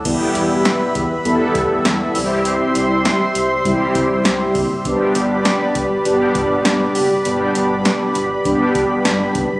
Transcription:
0.05 E2 G3 B3 E4 G4 B4 E5 B5, kick, closed hi-hat, crash
0.35 E2, closed hi-hat
0.65 snare, closed hi-hat
0.95 E2, kick, closed hi-hat
1.25 E2 G3 B3 E4 A4, closed hi-hat
1.55 E2, kick, closed hi-hat
1.85 E2, snare, closed hi-hat
2.15 C2 G3 C4 E4 G4 C5 C6, open hi-hat
2.45 closed hi-hat
2.75 C2, closed hi-hat
3.05 snare, closed hi-hat
3.35 C2, closed hi-hat
3.65 C2 G3 C4 E4 G4, kick, closed hi-hat
3.95 C2, kick, closed hi-hat
4.25 C2, snare, closed hi-hat
4.55 F#1, kick, open hi-hat
4.85 G1 G3 B3 D4 G4 B4 D5 B5, kick, closed hi-hat
5.15 G1, closed hi-hat
5.45 snare, closed hi-hat
5.75 G1, kick, closed hi-hat
6.05 G1 G3 B3 D4 G4, closed hi-hat
6.35 G1, kick, closed hi-hat
6.65 G1, snare, closed hi-hat
6.95 F#1, open hi-hat
7.25 G1 G3 B3 D4 G4, closed hi-hat
7.55 G1, closed hi-hat
7.85 snare, closed hi-hat
8.15 G1, closed hi-hat
8.45 G1 G3 B3 D4 G4, kick, closed hi-hat
8.75 G1, kick, closed hi-hat
9.05 G1, snare, closed hi-hat
9.35 F#1, kick, closed hi-hat

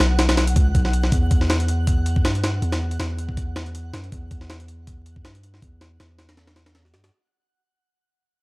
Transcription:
Already playing: F#5
0.00 B1
0.19 snare, closed hi-hat
0.29 snare, closed hi-hat
0.37 snare, closed hi-hat
0.47 closed hi-hat
0.56 C#2, kick, closed hi-hat
0.75 B1, kick, closed hi-hat
0.85 snare
0.93 closed hi-hat
1.04 snare
1.12 E2, kick, closed hi-hat
1.31 kick, closed hi-hat
1.41 snare
1.50 snare, closed hi-hat
1.60 closed hi-hat
1.68 closed hi-hat
1.87 kick, closed hi-hat
2.06 closed hi-hat
2.16 kick
2.25 G2, snare, closed hi-hat
2.35 closed hi-hat
2.44 snare, closed hi-hat
2.62 E2, closed hi-hat
2.72 snare, closed hi-hat
2.91 closed hi-hat
3.00 E2, snare, closed hi-hat
3.19 closed hi-hat
3.29 kick
3.37 kick, closed hi-hat
3.56 snare, closed hi-hat
3.66 closed hi-hat
3.75 closed hi-hat
3.93 F#2, snare, closed hi-hat
4.04 closed hi-hat
4.12 E2, kick, closed hi-hat
4.31 kick, closed hi-hat
4.41 snare
4.50 snare, closed hi-hat
4.60 closed hi-hat
4.68 closed hi-hat
4.87 kick, closed hi-hat
5.06 closed hi-hat
5.16 kick
5.25 G2, snare, closed hi-hat
5.35 closed hi-hat
5.43 closed hi-hat
5.54 snare
5.62 E2, kick, closed hi-hat
5.81 snare, closed hi-hat
6.00 E2, snare, closed hi-hat
6.19 snare, closed hi-hat
6.29 snare, closed hi-hat
6.37 snare, closed hi-hat
6.47 snare, closed hi-hat
6.56 snare, closed hi-hat
6.66 snare, closed hi-hat
6.75 snare, closed hi-hat
6.85 snare
6.94 G2, snare, closed hi-hat
7.04 snare, closed hi-hat

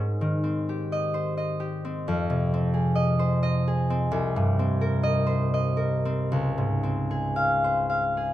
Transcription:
Already playing: G#2 G#3 C4 C5
0.21 D#3
0.44 C4
0.69 G4
0.92 D#5
1.14 C5
1.37 D#5
1.60 G4
1.85 C4
2.08 F2
2.30 C3
2.54 C4
2.74 G#4
2.95 D#5
3.19 C5
3.43 D#5
3.67 G#4
3.90 C4
4.12 C2
4.36 G2
4.59 C4
4.81 A#4
5.03 D#5
5.27 C5
5.54 D#5
5.77 A#4
6.05 C4
6.32 C#2
6.58 G#2
6.83 C4
7.11 G#4
7.36 F5
7.64 C5
7.90 F5
8.17 G#4

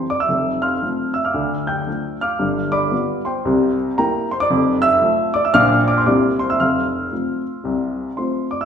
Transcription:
0.10 D5 D6
0.20 E5 E6
0.29 F1 F2
0.62 F5 C6 F6
0.82 F3 A3 C4
1.14 E5 E6
1.25 F5 D6 F6
1.34 D2 D3
1.67 G5 G6
1.87 F3 A3 D4
2.21 F5 D6 F6
2.39 G1 G2
2.72 D5 B5 D6
2.91 G3 B3 F4
3.25 C5 G5 C6
3.45 C2 C3
3.97 G3 A#3 E4 A#4 G5 A#5
4.31 C5 C6
4.40 D5 D6
4.50 F1 F2
4.82 E5 E6
5.02 F3 A3 F4
5.34 D5 D6
5.45 E5 E6
5.54 A#1 A#2 F3 D4 F4 F5 D6 F6
5.88 D5 D6
5.98 C5 C6
6.06 C2 C3 A#3 C4 E4 D5 D6
6.39 C5 C6
6.50 E5 E6
6.60 F1 F2 F5 C6 F6
7.12 A3 C4 F4
7.64 C2 C3
8.17 A3 C4 F4 C5 C6
8.51 D5 D6
8.61 E5 E6

